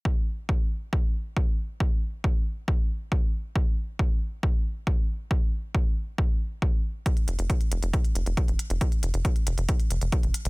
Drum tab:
HH |----------------|----------------|----------------|----------------|
BD |o---o---o---o---|o---o---o---o---|o---o---o---o---|o---o---o---o---|

HH |xxxxxxxxxxxxxxxx|xxxxxxxxxxxxxxxx|
BD |o---o---o---o---|o---o---o---o---|